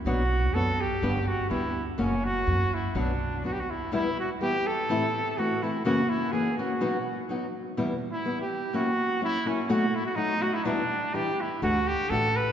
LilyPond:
<<
  \new Staff \with { instrumentName = "Trumpet" } { \time 2/4 \key b \minor \tempo 4 = 125 fis'4 a'8 g'8~ | g'8 fis'8 e'8. r16 | cis'8 fis'4 e'8 | d'4 fis'32 g'32 fis'16 e'8 |
\key e \minor e'8 fis'8 g'8 a'8~ | a'4 fis'8 e'8 | fis'8 e'8 gis'8 fis'8~ | fis'4 r4 |
\tuplet 3/2 { r4 e'8~ e'8 g'4 } | fis'4 e'8 cis'8 | fis'8 e'16 fis'16 dis'8 fis'16 e'16 | d'4 g'8 e'8 |
fis'8 g'8 a'8 b'8 | }
  \new Staff \with { instrumentName = "Nylon-string guitar" } { \time 2/4 \key b \minor <b, fis b d' fis' cis''>8 r8 <b d' fis' cis''>8 r8 | <g, d g b d' g'>8 r8 <g b d' g'>8 r8 | <fis, cis fis ais cis' fis'>8 r8 <fis ais cis' fis'>8 r8 | <b, fis b d' fis'>8 r8 <fis b d' fis'>8 r8 |
\key e \minor <e, b, e g b e'>8 r8 <e g b e'>8 r8 | <a, e a c' e'>8 r8 <e a c' e'>8 <e a c' e'>8 | <fis, cis e ais cis' fis'>8 r8 <e ais cis' fis'>8 <e ais cis' fis'>8 | <b, fis b dis' fis'>8 r8 <fis b dis' fis'>8 r8 |
<e, b, e g b e'>8 r8 <e g b e'>8 r8 | <fis ais cis' e'>8 r8 <fis ais cis' e'>8 <fis ais cis' e'>8 | <b, fis a dis' fis'>8 r8 <fis a dis' fis'>8 <fis a dis' fis'>8 | <e, b, e g d' e'>8 r8 <e g d' e'>8 r8 |
<d e a d' fis'>8 r8 <e a d' fis'>8 r8 | }
  \new Staff \with { instrumentName = "Upright bass" } { \clef bass \time 2/4 \key b \minor b,,4 fis,4 | g,,4 d,4 | fis,,4 fis,4 | b,,4 d,4 |
\key e \minor r2 | r2 | r2 | r2 |
r2 | r2 | r2 | r2 |
d,4 a,,4 | }
>>